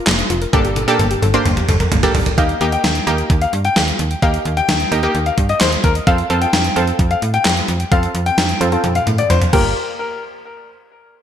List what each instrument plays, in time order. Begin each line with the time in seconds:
Already playing: synth pluck A#3 D4 F4 A#4
0.07 fm bass F1, synth arpeggio sound A#3, snare, clap, closed hi-hat
0.19 synth arpeggio sound D4, closed hi-hat
0.30 fm bass F1, synth arpeggio sound F4, closed hi-hat
0.42 synth arpeggio sound A#4, closed hi-hat
0.53 fm bass G1, synth pluck A#3 D4 G4 A4, synth arpeggio sound A#3, kick, closed hi-hat, high tom
0.65 synth arpeggio sound G4, closed hi-hat
0.76 synth arpeggio sound A4, closed hi-hat, high tom
0.88 synth pluck A#3 D4 G4 A4, synth arpeggio sound A#4, closed hi-hat
0.99 fm bass G1, synth arpeggio sound A#3, closed hi-hat, mid tom
1.11 synth arpeggio sound G4, closed hi-hat
1.22 fm bass G1, synth arpeggio sound A4, closed hi-hat, mid tom
1.34 synth pluck A#3 D4 G4 C5, synth arpeggio sound A#4, closed hi-hat
1.45 fm bass G1, synth arpeggio sound A#3, closed hi-hat, mid tom
1.57 synth arpeggio sound G4, closed hi-hat, mid tom
1.68 fm bass G1, synth arpeggio sound A4, closed hi-hat, mid tom
1.80 synth arpeggio sound A#4, closed hi-hat, mid tom
1.92 fm bass G1, synth arpeggio sound A#3, closed hi-hat, floor tom
2.03 synth pluck A#3 D4 G4 A4, synth arpeggio sound G4, closed hi-hat, floor tom
2.15 fm bass G1, synth arpeggio sound A4, floor tom, open hi-hat
2.26 synth arpeggio sound A#4, closed hi-hat, floor tom
2.38 fm bass D#2, synth pluck A#3 D#4 G4, grand piano F5, kick, closed hi-hat
2.49 closed hi-hat
2.61 fm bass D#2, synth pluck A#3 D#4 G4, closed hi-hat
2.72 grand piano G5, closed hi-hat
2.84 fm bass D#2, snare, closed hi-hat
2.95 closed hi-hat
3.07 fm bass D#2, synth pluck A#3 D#4 G4, closed hi-hat
3.18 closed hi-hat
3.30 fm bass D#2, kick, closed hi-hat
3.41 grand piano F5, closed hi-hat
3.53 fm bass G2, closed hi-hat
3.65 grand piano G5, closed hi-hat
3.76 fm bass D#2, snare, closed hi-hat
3.88 closed hi-hat
3.99 fm bass D#2, closed hi-hat
4.11 closed hi-hat
4.22 fm bass D#2, synth pluck A#3 D#4 G4, grand piano F5, kick, closed hi-hat
4.34 closed hi-hat
4.45 fm bass D#2, closed hi-hat
4.57 grand piano G5, closed hi-hat
4.69 fm bass D#2, snare, closed hi-hat
4.80 closed hi-hat
4.92 fm bass D#2, synth pluck A#3 D#4 G4, closed hi-hat
5.03 synth pluck A#3 D#4 G4, closed hi-hat
5.15 fm bass D#2, closed hi-hat
5.26 grand piano F5, closed hi-hat
5.38 fm bass G2, kick, closed hi-hat
5.49 grand piano D#5, closed hi-hat
5.61 fm bass D#2, grand piano C5, snare, clap, closed hi-hat
5.72 closed hi-hat
5.84 fm bass D#2, grand piano A#4, kick, closed hi-hat
5.95 closed hi-hat
6.07 fm bass F2, synth pluck C4 F4 A4, grand piano F5, kick, closed hi-hat
6.18 closed hi-hat
6.30 fm bass F2, synth pluck C4 F4 A4, closed hi-hat
6.42 grand piano G5, closed hi-hat
6.53 fm bass F2, snare, closed hi-hat
6.64 closed hi-hat
6.76 fm bass F2, synth pluck C4 F4 A4, closed hi-hat
6.87 closed hi-hat
6.99 fm bass F2, kick, closed hi-hat
7.11 grand piano F5, closed hi-hat
7.22 fm bass A2, closed hi-hat
7.34 grand piano G5, closed hi-hat
7.45 fm bass F2, snare, clap, closed hi-hat
7.57 closed hi-hat
7.68 fm bass F2, closed hi-hat
7.80 closed hi-hat
7.92 fm bass F2, synth pluck C4 F4 A4, grand piano F5, kick, closed hi-hat
8.03 closed hi-hat
8.15 fm bass F2, closed hi-hat
8.26 grand piano G5, closed hi-hat
8.38 fm bass F2, snare, closed hi-hat
8.49 closed hi-hat
8.61 fm bass F2, synth pluck C4 F4 A4, closed hi-hat
8.72 synth pluck C4 F4 A4, closed hi-hat
8.84 fm bass F2, closed hi-hat, high tom
8.95 grand piano F5, closed hi-hat
9.07 fm bass A2, closed hi-hat, mid tom
9.18 grand piano D5, closed hi-hat
9.30 fm bass F2, grand piano C5, closed hi-hat, mid tom
9.42 closed hi-hat, mid tom
9.53 fm bass G1, synth pluck A#3 F4 G4, grand piano A#4, kick, crash